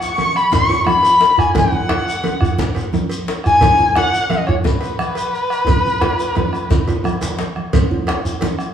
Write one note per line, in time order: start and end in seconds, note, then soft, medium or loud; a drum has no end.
0.01 0.38 C#6 loud
0.01 shekere soft
0.18 cowbell medium
0.18 djembe tone medium
0.18 high conga medium
0.18 shekere soft
0.35 0.55 B5 medium
0.35 bombo rim medium
0.35 high conga soft
0.35 shekere soft
0.52 0.87 C#6 loud
0.52 bombo low medium
0.52 djembe slap medium
0.52 low conga medium
0.52 djembe bass medium
0.52 shekere medium
0.69 cowbell soft
0.69 djembe tone medium
0.69 shekere soft
0.86 1.41 B5 medium
0.86 bombo rim loud
0.86 high conga medium
0.86 djembe tone medium
0.86 shekere soft
1.03 cowbell soft
1.03 shekere soft
1.21 djembe slap medium
1.21 shekere soft
1.38 1.56 G#5 medium
1.38 bombo rim medium
1.38 djembe bass medium
1.38 shekere soft
1.55 2.90 F#5 medium
1.55 bombo low loud
1.55 cowbell medium
1.55 djembe slap medium
1.55 djembe tone medium
1.55 high conga medium
1.55 djembe bass medium
1.55 low conga medium
1.55 shekere medium
1.73 djembe tone medium
1.89 bombo rim loud
1.89 cowbell medium
1.89 djembe slap medium
1.89 high conga soft
1.89 djembe tone medium
2.09 shekere soft
2.24 cowbell medium
2.24 high conga medium
2.24 djembe tone medium
2.24 shekere soft
2.41 bombo rim medium
2.41 high conga soft
2.41 djembe bass medium
2.41 shekere soft
2.58 bombo low medium
2.58 djembe slap medium
2.58 low conga medium
2.58 djembe bass medium
2.58 shekere medium
2.75 cowbell medium
2.75 djembe tone medium
2.75 shekere soft
2.93 high conga medium
2.93 djembe tone medium
2.93 shekere soft
3.09 cowbell medium
3.09 shekere soft
3.28 djembe slap medium
3.28 shekere soft
3.44 3.93 G#5 loud
3.44 bombo rim medium
3.44 djembe bass medium
3.44 shekere soft
3.61 bombo low loud
3.61 cowbell medium
3.61 djembe slap loud
3.61 djembe tone medium
3.61 high conga medium
3.61 djembe bass medium
3.61 low conga medium
3.61 shekere medium
3.80 djembe tone medium
3.95 4.32 F#5 medium
3.95 bombo rim medium
3.95 cowbell medium
3.95 djembe slap medium
3.95 high conga soft
3.95 djembe tone medium
4.14 shekere soft
4.30 4.47 D#5 medium
4.30 cowbell medium
4.30 high conga medium
4.30 djembe tone medium
4.30 shekere soft
4.47 4.55 C#5 medium
4.47 bombo rim medium
4.47 high conga soft
4.47 djembe bass medium
4.64 7.35 B4 medium
4.64 bombo low medium
4.64 djembe slap medium
4.64 low conga medium
4.64 djembe bass medium
4.64 shekere medium
4.81 cowbell soft
4.81 shekere soft
4.99 bombo rim medium
4.99 high conga medium
4.99 shekere soft
5.15 cowbell soft
5.15 shekere soft
5.34 shekere soft
5.50 bombo rim medium
5.50 shekere soft
5.67 bombo rim soft
5.67 bombo low medium
5.67 cowbell medium
5.67 djembe slap soft
5.67 djembe tone medium
5.67 djembe tone loud
5.67 high conga medium
5.67 djembe bass medium
5.67 low conga medium
5.67 shekere medium
5.86 shekere soft
6.01 bombo rim medium
6.01 cowbell soft
6.01 djembe slap medium
6.01 djembe tone loud
6.19 bombo rim soft
6.19 shekere soft
6.35 bombo rim soft
6.35 cowbell medium
6.35 high conga medium
6.35 djembe tone medium
6.35 djembe tone loud
6.53 bombo rim medium
6.53 shekere soft
6.71 bombo low medium
6.71 djembe slap medium
6.71 djembe tone loud
6.71 djembe bass medium
6.71 low conga medium
6.71 shekere medium
6.88 bombo rim soft
6.88 cowbell soft
6.88 djembe tone loud
6.88 shekere soft
7.04 bombo rim medium
7.04 djembe slap soft
7.04 djembe tone medium
7.04 high conga medium
7.04 shekere soft
7.21 cowbell medium
7.21 djembe slap medium
7.21 low conga soft
7.21 shekere medium
7.39 djembe slap medium
7.39 high conga soft
7.39 shekere soft
7.56 bombo rim medium
7.56 djembe slap soft
7.56 high conga medium
7.73 bombo low medium
7.73 cowbell medium
7.73 djembe tone medium
7.73 high conga medium
7.73 djembe bass medium
7.73 low conga medium
7.73 shekere medium
7.91 djembe tone medium
8.07 bombo rim medium
8.07 cowbell medium
8.07 djembe slap medium
8.07 high conga soft
8.25 djembe tone medium
8.25 shekere soft
8.41 cowbell medium
8.41 djembe slap medium
8.41 high conga medium
8.41 djembe tone medium
8.41 shekere soft
8.59 bombo rim medium
8.59 high conga soft
8.59 shekere soft